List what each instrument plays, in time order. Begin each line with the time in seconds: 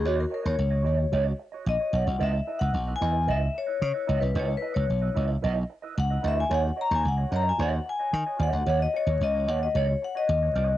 0.04 slap bass D#2, clean electric guitar F#4 C#5 D#5, vibraphone F#4
0.17 vibraphone A#4, muted clean electric guitar stroke
0.30 clean electric guitar F#4 C#5 D#5, vibraphone A#4
0.43 slap bass D#2, clean electric guitar F#4 C#5 D#5, vibraphone C#5
0.57 slap bass C#2, muted clean electric guitar stroke
0.70 clean electric guitar F#4 C#5 D#5
0.84 slap bass D#2, clean electric guitar F#4 C#5 D#5
0.98 muted clean electric guitar stroke
1.12 slap bass C#2, clean electric guitar F#4 C#5 D#5
1.25 muted clean electric guitar stroke
1.38 muted clean electric guitar stroke
1.52 clean electric guitar F#4 C#5 D#5
1.66 slap bass A#1, vibraphone D#5, muted clean electric guitar stroke
1.79 clean electric guitar F#4 C#5 D#5
1.93 slap bass B1, clean electric guitar F#4 C#5 D#5, vibraphone F#5
2.06 slap bass C2, muted clean electric guitar stroke
2.19 slap bass C#2, clean electric guitar E4 B4 D#5
2.23 vibraphone E5
2.34 muted clean electric guitar stroke
2.47 clean electric guitar E4 B4 D#5
2.59 slap bass C#2, clean electric guitar E4 B4 D#5, vibraphone F#5
2.74 slap bass B1, muted clean electric guitar stroke
2.87 clean electric guitar E4 B4 D#5
2.96 vibraphone G#5
3.01 slap bass E2, clean electric guitar E4 B4 D#5
3.14 muted clean electric guitar stroke
3.27 slap bass C#2, clean electric guitar E4 B4 D#5, vibraphone E5
3.40 muted clean electric guitar stroke
3.54 vibraphone C#5, muted clean electric guitar stroke
3.66 clean electric guitar E4 B4 D#5
3.81 slap bass C#3, muted clean electric guitar stroke
3.85 vibraphone C#5
3.93 clean electric guitar E4 B4 D#5
4.07 slap bass C#2, clean electric guitar E4 B4 D#5
4.21 slap bass C2, vibraphone B4, muted clean electric guitar stroke
4.34 slap bass C#2, clean electric guitar E4 B4 D#5
4.39 vibraphone C#5
4.48 muted clean electric guitar stroke
4.57 clean electric guitar E4, vibraphone B4
4.62 clean electric guitar B4 D#5
4.74 slap bass C#2, clean electric guitar E4 B4 D#5, vibraphone C#5
4.88 slap bass B1, muted clean electric guitar stroke
5.01 clean electric guitar E4 B4 D#5
5.15 slap bass C#2, clean electric guitar E4 B4 D#5
5.29 muted clean electric guitar stroke
5.42 slap bass B1, clean electric guitar E4 B4 D#5
5.55 muted clean electric guitar stroke
5.70 muted clean electric guitar stroke
5.82 clean electric guitar E4 B4 D#5
5.97 slap bass C#2, vibraphone F#5, muted clean electric guitar stroke
6.10 clean electric guitar E4 B4 D#5
6.23 slap bass D2, clean electric guitar E4 B4 D#5
6.28 vibraphone E5
6.36 muted clean electric guitar stroke
6.40 vibraphone G#5
6.49 slap bass D#2, clean electric guitar F#4 C#5 D#5
6.54 vibraphone F#5
6.63 muted clean electric guitar stroke
6.76 clean electric guitar F#4 C#5 D#5
6.81 vibraphone A#5
6.90 slap bass D#2, clean electric guitar F#4 C#5 D#5
6.95 vibraphone G#5
7.04 slap bass C#2, vibraphone F#5, muted clean electric guitar stroke
7.17 clean electric guitar F#4 C#5 D#5
7.31 slap bass F#2, clean electric guitar F#4 C#5 D#5
7.36 vibraphone A#5
7.45 vibraphone G#5, muted clean electric guitar stroke
7.58 slap bass D#2, clean electric guitar F#4 C#5 D#5
7.63 vibraphone F#5
7.72 muted clean electric guitar stroke
7.86 vibraphone G#5, muted clean electric guitar stroke
7.99 clean electric guitar F#4 C#5 D#5
8.13 slap bass D#3, muted clean electric guitar stroke
8.26 clean electric guitar F#4 C#5 D#5
8.39 slap bass D#2, clean electric guitar F#4 C#5 D#5, vibraphone F#5
8.53 slap bass D2, muted clean electric guitar stroke
8.66 slap bass D#2, clean electric guitar F#4 C#5 D#5, vibraphone F#5
8.80 vibraphone D#5, muted clean electric guitar stroke
8.94 clean electric guitar F#4 C#5 D#5, vibraphone C#5
9.07 slap bass D#2, clean electric guitar F#4 C#5 D#5
9.21 slap bass C#2, vibraphone D#5, muted clean electric guitar stroke
9.34 clean electric guitar F#4 C#5 D#5
9.47 slap bass D#2, clean electric guitar F#4 C#5 D#5, vibraphone F#5
9.61 vibraphone D#5, muted clean electric guitar stroke
9.75 slap bass C#2, clean electric guitar F#4 C#5 D#5, vibraphone C#5
9.88 muted clean electric guitar stroke
10.02 vibraphone F#5, muted clean electric guitar stroke
10.15 clean electric guitar F#4 C#5 D#5, vibraphone D#5
10.29 slap bass D#2, muted clean electric guitar stroke
10.42 clean electric guitar F#4 C#5 D#5
10.55 slap bass C2, clean electric guitar F#4 C#5 D#5
10.69 muted clean electric guitar stroke